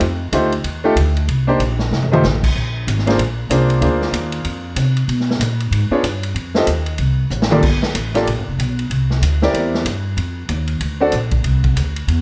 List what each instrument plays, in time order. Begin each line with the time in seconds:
0.00 upright bass F2, ride
0.32 upright bass D2, upright piano A3 D#4 F4 G4 C5, hi-hat pedal, ride
0.52 ride
0.64 upright bass D#2, ride
0.84 upright piano A3 D#4 F4 G4 A4
0.96 upright bass D2, hi-hat pedal, ride
1.16 ride
1.28 upright bass C2, ride
1.47 upright piano A#3 D4 D#4 G4 C5
1.60 upright bass A#1, hi-hat pedal, ride
1.79 snare
1.91 upright bass F1, snare
2.02 floor tom
2.12 upright piano A3 D#4 F4 G4 C5, mid tom
2.23 upright bass A1, snare, hi-hat pedal
2.43 kick, crash
2.56 upright bass A#1
2.87 upright bass G#1, hi-hat pedal, ride
2.98 snare
3.07 upright piano A#3 D4 F4 G#4 C5, snare, ride
3.18 upright bass A#1, ride
3.49 upright bass C2, upright piano A#3 D4 F4 G#4 C5, hi-hat pedal, ride
3.70 ride
3.81 upright bass D2, upright piano A#3 D4 F4 G#4 C5, ride
4.01 snare
4.13 upright bass D#2, hi-hat pedal, ride
4.32 ride
4.44 upright bass F2, ride
4.76 upright bass C3, hi-hat pedal, ride
4.97 ride
5.08 upright bass B2, ride
5.20 snare
5.30 snare
5.40 upright bass A#2, hi-hat pedal, ride
5.60 ride
5.71 upright bass G#2, ride
5.91 upright piano B3 D4 F4 G#4 C#5, muted upright bass stroke
6.03 upright bass G2, hi-hat pedal, ride
6.23 ride
6.34 upright bass F2, ride
6.55 upright piano C4 F4 G4 A4 D#5, snare
6.67 upright bass D#2, hi-hat pedal, ride
6.86 ride
6.98 upright bass C2, ride
7.30 upright bass A1, hi-hat pedal
7.42 snare
7.51 upright piano A#3 F4 G4 A4 D5, mid tom
7.62 upright bass G1, kick, crash
7.82 muted upright bass stroke, snare
7.95 upright bass A1, hi-hat pedal, ride
8.14 upright piano A#3 F4 G4 A4 D5, snare, ride
8.27 upright bass A#1, ride
8.38 upright bass G1
8.48 upright bass F1
8.59 upright bass B1, hi-hat pedal, ride
8.79 ride
8.90 upright bass C2, ride
9.10 snare
9.21 upright bass D2, hi-hat pedal, ride
9.42 upright piano C4 E4 G4 A#4 D5, snare
9.53 upright bass E2, ride
9.74 snare
9.85 upright bass G2, hi-hat pedal, ride
10.17 upright bass F2, ride
10.49 upright bass D#2, hi-hat pedal, ride
10.67 ride
10.80 upright bass D2, ride
11.00 upright piano C4 D4 F#4 A4 D5
11.12 upright bass A#1, hi-hat pedal, ride
11.31 kick, ride
11.44 upright bass C2, ride
11.64 kick, ride
11.76 upright bass D2, hi-hat pedal, ride
11.96 ride
12.08 upright bass E2, ride